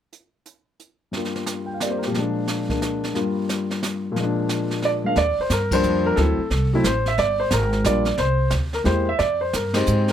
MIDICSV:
0, 0, Header, 1, 5, 480
1, 0, Start_track
1, 0, Tempo, 336134
1, 180, Time_signature, 3, 2, 24, 8
1, 14459, End_track
2, 0, Start_track
2, 0, Title_t, "Grand piano"
2, 0, Program_c, 0, 0
2, 1590, Note_on_c, 0, 43, 37
2, 1617, Note_on_c, 0, 55, 38
2, 1636, Note_on_c, 0, 58, 35
2, 1668, Note_on_c, 0, 65, 39
2, 2368, Note_on_c, 0, 79, 36
2, 2485, Note_on_c, 0, 77, 38
2, 2508, Note_off_c, 0, 79, 0
2, 2563, Note_off_c, 0, 58, 0
2, 2585, Note_on_c, 0, 58, 37
2, 2606, Note_on_c, 0, 74, 43
2, 2610, Note_on_c, 0, 60, 32
2, 2631, Note_on_c, 0, 67, 39
2, 2643, Note_off_c, 0, 77, 0
2, 2709, Note_on_c, 0, 72, 45
2, 2812, Note_off_c, 0, 74, 0
2, 2829, Note_on_c, 0, 70, 46
2, 2907, Note_off_c, 0, 72, 0
2, 2927, Note_off_c, 0, 67, 0
2, 2949, Note_on_c, 0, 67, 44
2, 2961, Note_on_c, 0, 46, 46
2, 2979, Note_off_c, 0, 70, 0
2, 3018, Note_on_c, 0, 53, 41
2, 3049, Note_off_c, 0, 43, 0
2, 3062, Note_off_c, 0, 55, 0
2, 3065, Note_off_c, 0, 58, 0
2, 3078, Note_off_c, 0, 60, 0
2, 3080, Note_on_c, 0, 56, 38
2, 3087, Note_off_c, 0, 65, 0
2, 3114, Note_off_c, 0, 67, 0
2, 3121, Note_on_c, 0, 62, 51
2, 3811, Note_off_c, 0, 56, 0
2, 3832, Note_on_c, 0, 56, 38
2, 3841, Note_off_c, 0, 62, 0
2, 3843, Note_on_c, 0, 58, 36
2, 3863, Note_on_c, 0, 62, 43
2, 4454, Note_off_c, 0, 46, 0
2, 4470, Note_off_c, 0, 58, 0
2, 4483, Note_off_c, 0, 53, 0
2, 4483, Note_on_c, 0, 43, 46
2, 4490, Note_on_c, 0, 55, 35
2, 4491, Note_on_c, 0, 58, 41
2, 4495, Note_off_c, 0, 56, 0
2, 4509, Note_on_c, 0, 65, 46
2, 4510, Note_off_c, 0, 62, 0
2, 5878, Note_on_c, 0, 46, 52
2, 5924, Note_on_c, 0, 53, 45
2, 5935, Note_off_c, 0, 43, 0
2, 5939, Note_off_c, 0, 55, 0
2, 5939, Note_off_c, 0, 58, 0
2, 5948, Note_off_c, 0, 65, 0
2, 5981, Note_on_c, 0, 56, 43
2, 6039, Note_on_c, 0, 62, 53
2, 6927, Note_on_c, 0, 74, 81
2, 6999, Note_off_c, 0, 74, 0
2, 7179, Note_off_c, 0, 56, 0
2, 7200, Note_on_c, 0, 56, 37
2, 7215, Note_on_c, 0, 58, 34
2, 7217, Note_off_c, 0, 62, 0
2, 7231, Note_on_c, 0, 77, 83
2, 7239, Note_on_c, 0, 62, 45
2, 7352, Note_off_c, 0, 46, 0
2, 7375, Note_off_c, 0, 53, 0
2, 7379, Note_off_c, 0, 56, 0
2, 7386, Note_off_c, 0, 58, 0
2, 7395, Note_on_c, 0, 74, 82
2, 7398, Note_off_c, 0, 62, 0
2, 7399, Note_off_c, 0, 77, 0
2, 7709, Note_off_c, 0, 74, 0
2, 7721, Note_on_c, 0, 72, 74
2, 7884, Note_off_c, 0, 72, 0
2, 7890, Note_on_c, 0, 70, 69
2, 8164, Note_on_c, 0, 53, 57
2, 8166, Note_off_c, 0, 70, 0
2, 8176, Note_on_c, 0, 55, 53
2, 8181, Note_on_c, 0, 58, 53
2, 8182, Note_on_c, 0, 72, 92
2, 8183, Note_on_c, 0, 62, 68
2, 8625, Note_off_c, 0, 72, 0
2, 8655, Note_on_c, 0, 70, 84
2, 8786, Note_off_c, 0, 53, 0
2, 8792, Note_off_c, 0, 55, 0
2, 8794, Note_off_c, 0, 58, 0
2, 8795, Note_off_c, 0, 62, 0
2, 8799, Note_on_c, 0, 69, 84
2, 8814, Note_off_c, 0, 70, 0
2, 8816, Note_on_c, 0, 54, 49
2, 8824, Note_on_c, 0, 57, 49
2, 8834, Note_on_c, 0, 60, 49
2, 8845, Note_on_c, 0, 64, 58
2, 9099, Note_off_c, 0, 54, 0
2, 9103, Note_off_c, 0, 57, 0
2, 9108, Note_off_c, 0, 60, 0
2, 9114, Note_off_c, 0, 64, 0
2, 9545, Note_off_c, 0, 69, 0
2, 9614, Note_on_c, 0, 54, 65
2, 9620, Note_on_c, 0, 57, 59
2, 9636, Note_on_c, 0, 60, 60
2, 9638, Note_on_c, 0, 64, 77
2, 9768, Note_off_c, 0, 54, 0
2, 9771, Note_off_c, 0, 57, 0
2, 9779, Note_off_c, 0, 60, 0
2, 9780, Note_off_c, 0, 64, 0
2, 9791, Note_on_c, 0, 72, 82
2, 10106, Note_off_c, 0, 72, 0
2, 10106, Note_on_c, 0, 76, 85
2, 10259, Note_off_c, 0, 76, 0
2, 10264, Note_on_c, 0, 74, 91
2, 10562, Note_on_c, 0, 72, 76
2, 10582, Note_off_c, 0, 74, 0
2, 10743, Note_off_c, 0, 72, 0
2, 10750, Note_on_c, 0, 70, 74
2, 11193, Note_on_c, 0, 55, 52
2, 11212, Note_on_c, 0, 58, 45
2, 11217, Note_on_c, 0, 62, 45
2, 11223, Note_on_c, 0, 65, 61
2, 11225, Note_on_c, 0, 74, 74
2, 11241, Note_off_c, 0, 70, 0
2, 11486, Note_off_c, 0, 55, 0
2, 11496, Note_off_c, 0, 58, 0
2, 11498, Note_off_c, 0, 62, 0
2, 11501, Note_off_c, 0, 65, 0
2, 11670, Note_off_c, 0, 74, 0
2, 11690, Note_on_c, 0, 72, 85
2, 12142, Note_off_c, 0, 72, 0
2, 12482, Note_on_c, 0, 70, 69
2, 12553, Note_off_c, 0, 70, 0
2, 12625, Note_on_c, 0, 56, 53
2, 12628, Note_on_c, 0, 58, 45
2, 12636, Note_on_c, 0, 64, 46
2, 12643, Note_on_c, 0, 67, 60
2, 12652, Note_on_c, 0, 72, 77
2, 12921, Note_off_c, 0, 56, 0
2, 12923, Note_off_c, 0, 58, 0
2, 12927, Note_off_c, 0, 64, 0
2, 12930, Note_off_c, 0, 67, 0
2, 12975, Note_off_c, 0, 72, 0
2, 12978, Note_on_c, 0, 76, 84
2, 13119, Note_on_c, 0, 74, 80
2, 13133, Note_off_c, 0, 76, 0
2, 13417, Note_off_c, 0, 74, 0
2, 13436, Note_on_c, 0, 72, 65
2, 13601, Note_off_c, 0, 72, 0
2, 13638, Note_on_c, 0, 70, 63
2, 13901, Note_on_c, 0, 56, 60
2, 13911, Note_on_c, 0, 60, 59
2, 13924, Note_on_c, 0, 63, 51
2, 13928, Note_on_c, 0, 67, 60
2, 13935, Note_on_c, 0, 72, 67
2, 13947, Note_off_c, 0, 70, 0
2, 14426, Note_off_c, 0, 72, 0
2, 14459, Note_off_c, 0, 56, 0
2, 14459, Note_off_c, 0, 60, 0
2, 14459, Note_off_c, 0, 63, 0
2, 14459, Note_off_c, 0, 67, 0
2, 14459, End_track
3, 0, Start_track
3, 0, Title_t, "Upright bass"
3, 0, Program_c, 1, 32
3, 7370, Note_on_c, 1, 39, 70
3, 7665, Note_off_c, 1, 39, 0
3, 7849, Note_on_c, 1, 43, 66
3, 8319, Note_off_c, 1, 43, 0
3, 8327, Note_on_c, 1, 41, 76
3, 8801, Note_off_c, 1, 41, 0
3, 8813, Note_on_c, 1, 38, 76
3, 9107, Note_off_c, 1, 38, 0
3, 9288, Note_on_c, 1, 36, 78
3, 9761, Note_off_c, 1, 36, 0
3, 9767, Note_on_c, 1, 33, 77
3, 10241, Note_off_c, 1, 33, 0
3, 10249, Note_on_c, 1, 31, 69
3, 10714, Note_off_c, 1, 31, 0
3, 10723, Note_on_c, 1, 32, 76
3, 11198, Note_off_c, 1, 32, 0
3, 11210, Note_on_c, 1, 34, 71
3, 11675, Note_off_c, 1, 34, 0
3, 11684, Note_on_c, 1, 36, 73
3, 12154, Note_off_c, 1, 36, 0
3, 12162, Note_on_c, 1, 38, 67
3, 12637, Note_off_c, 1, 38, 0
3, 12643, Note_on_c, 1, 40, 77
3, 13117, Note_off_c, 1, 40, 0
3, 13128, Note_on_c, 1, 41, 76
3, 13599, Note_off_c, 1, 41, 0
3, 13616, Note_on_c, 1, 43, 73
3, 14083, Note_off_c, 1, 43, 0
3, 14102, Note_on_c, 1, 44, 77
3, 14459, Note_off_c, 1, 44, 0
3, 14459, End_track
4, 0, Start_track
4, 0, Title_t, "Muted upright bass strokes"
4, 7691, Note_on_c, 9, 29, 34
4, 7834, Note_off_c, 9, 29, 0
4, 9116, Note_on_c, 9, 29, 36
4, 9259, Note_off_c, 9, 29, 0
4, 14459, End_track
5, 0, Start_track
5, 0, Title_t, "Drums"
5, 180, Note_on_c, 9, 42, 52
5, 323, Note_off_c, 9, 42, 0
5, 652, Note_on_c, 9, 42, 46
5, 795, Note_off_c, 9, 42, 0
5, 1137, Note_on_c, 9, 42, 50
5, 1280, Note_off_c, 9, 42, 0
5, 1614, Note_on_c, 9, 25, 42
5, 1614, Note_on_c, 9, 38, 35
5, 1757, Note_off_c, 9, 38, 0
5, 1779, Note_on_c, 9, 38, 23
5, 1922, Note_off_c, 9, 38, 0
5, 1936, Note_on_c, 9, 38, 35
5, 2078, Note_off_c, 9, 38, 0
5, 2090, Note_on_c, 9, 38, 48
5, 2092, Note_on_c, 9, 44, 57
5, 2233, Note_off_c, 9, 38, 0
5, 2235, Note_off_c, 9, 44, 0
5, 2576, Note_on_c, 9, 38, 50
5, 2577, Note_on_c, 9, 44, 47
5, 2718, Note_off_c, 9, 38, 0
5, 2720, Note_off_c, 9, 44, 0
5, 2893, Note_on_c, 9, 38, 29
5, 3036, Note_off_c, 9, 38, 0
5, 3060, Note_off_c, 9, 25, 0
5, 3060, Note_on_c, 9, 25, 48
5, 3060, Note_on_c, 9, 38, 37
5, 3203, Note_off_c, 9, 38, 0
5, 3536, Note_on_c, 9, 38, 47
5, 3537, Note_on_c, 9, 44, 49
5, 3679, Note_off_c, 9, 38, 0
5, 3680, Note_off_c, 9, 44, 0
5, 3849, Note_on_c, 9, 36, 44
5, 3853, Note_on_c, 9, 38, 32
5, 3992, Note_off_c, 9, 36, 0
5, 3996, Note_off_c, 9, 38, 0
5, 4027, Note_on_c, 9, 38, 51
5, 4028, Note_on_c, 9, 44, 48
5, 4170, Note_off_c, 9, 38, 0
5, 4171, Note_off_c, 9, 44, 0
5, 4336, Note_on_c, 9, 38, 30
5, 4479, Note_off_c, 9, 38, 0
5, 4500, Note_off_c, 9, 25, 0
5, 4500, Note_on_c, 9, 25, 51
5, 4500, Note_on_c, 9, 38, 38
5, 4643, Note_off_c, 9, 38, 0
5, 4987, Note_on_c, 9, 38, 45
5, 4988, Note_on_c, 9, 44, 54
5, 5130, Note_off_c, 9, 38, 0
5, 5131, Note_off_c, 9, 44, 0
5, 5293, Note_on_c, 9, 38, 33
5, 5436, Note_off_c, 9, 38, 0
5, 5466, Note_on_c, 9, 38, 50
5, 5468, Note_on_c, 9, 44, 56
5, 5609, Note_off_c, 9, 38, 0
5, 5610, Note_off_c, 9, 44, 0
5, 5944, Note_off_c, 9, 25, 0
5, 5944, Note_on_c, 9, 25, 50
5, 5944, Note_on_c, 9, 38, 41
5, 6086, Note_off_c, 9, 38, 0
5, 6413, Note_on_c, 9, 38, 50
5, 6414, Note_on_c, 9, 44, 52
5, 6556, Note_off_c, 9, 38, 0
5, 6557, Note_off_c, 9, 44, 0
5, 6722, Note_on_c, 9, 38, 31
5, 6865, Note_off_c, 9, 38, 0
5, 6889, Note_on_c, 9, 38, 38
5, 7032, Note_off_c, 9, 38, 0
5, 7365, Note_off_c, 9, 25, 0
5, 7365, Note_on_c, 9, 25, 49
5, 7365, Note_on_c, 9, 38, 42
5, 7508, Note_off_c, 9, 38, 0
5, 7853, Note_on_c, 9, 38, 54
5, 7854, Note_on_c, 9, 44, 65
5, 7995, Note_off_c, 9, 38, 0
5, 7997, Note_off_c, 9, 44, 0
5, 8158, Note_on_c, 9, 36, 67
5, 8161, Note_on_c, 9, 51, 67
5, 8301, Note_off_c, 9, 36, 0
5, 8304, Note_off_c, 9, 51, 0
5, 8325, Note_on_c, 9, 44, 47
5, 8468, Note_off_c, 9, 44, 0
5, 8811, Note_off_c, 9, 25, 0
5, 8811, Note_on_c, 9, 25, 41
5, 8811, Note_on_c, 9, 38, 42
5, 8953, Note_off_c, 9, 38, 0
5, 9289, Note_on_c, 9, 38, 37
5, 9432, Note_off_c, 9, 38, 0
5, 9771, Note_on_c, 9, 38, 58
5, 9773, Note_on_c, 9, 44, 58
5, 9914, Note_off_c, 9, 38, 0
5, 9915, Note_off_c, 9, 44, 0
5, 10079, Note_on_c, 9, 38, 32
5, 10222, Note_off_c, 9, 38, 0
5, 10248, Note_off_c, 9, 25, 0
5, 10248, Note_on_c, 9, 25, 53
5, 10248, Note_on_c, 9, 38, 39
5, 10391, Note_off_c, 9, 38, 0
5, 10719, Note_on_c, 9, 38, 56
5, 10721, Note_on_c, 9, 44, 60
5, 10862, Note_off_c, 9, 38, 0
5, 10864, Note_off_c, 9, 44, 0
5, 11033, Note_on_c, 9, 38, 31
5, 11176, Note_off_c, 9, 38, 0
5, 11203, Note_on_c, 9, 38, 60
5, 11204, Note_on_c, 9, 44, 62
5, 11346, Note_off_c, 9, 38, 0
5, 11347, Note_off_c, 9, 44, 0
5, 11496, Note_on_c, 9, 38, 32
5, 11639, Note_off_c, 9, 38, 0
5, 11674, Note_off_c, 9, 25, 0
5, 11674, Note_on_c, 9, 25, 47
5, 11674, Note_on_c, 9, 38, 41
5, 11817, Note_off_c, 9, 38, 0
5, 12145, Note_on_c, 9, 38, 60
5, 12147, Note_on_c, 9, 44, 49
5, 12288, Note_off_c, 9, 38, 0
5, 12289, Note_off_c, 9, 44, 0
5, 12467, Note_on_c, 9, 38, 32
5, 12610, Note_off_c, 9, 38, 0
5, 12639, Note_on_c, 9, 38, 41
5, 12782, Note_off_c, 9, 38, 0
5, 13122, Note_off_c, 9, 25, 0
5, 13122, Note_on_c, 9, 25, 53
5, 13122, Note_on_c, 9, 38, 46
5, 13265, Note_off_c, 9, 38, 0
5, 13613, Note_on_c, 9, 38, 54
5, 13615, Note_on_c, 9, 44, 62
5, 13756, Note_off_c, 9, 38, 0
5, 13758, Note_off_c, 9, 44, 0
5, 13909, Note_on_c, 9, 38, 66
5, 13910, Note_on_c, 9, 51, 60
5, 14051, Note_off_c, 9, 38, 0
5, 14053, Note_off_c, 9, 51, 0
5, 14085, Note_on_c, 9, 44, 58
5, 14228, Note_off_c, 9, 44, 0
5, 14392, Note_on_c, 9, 38, 32
5, 14459, Note_off_c, 9, 25, 0
5, 14459, Note_off_c, 9, 38, 0
5, 14459, End_track
0, 0, End_of_file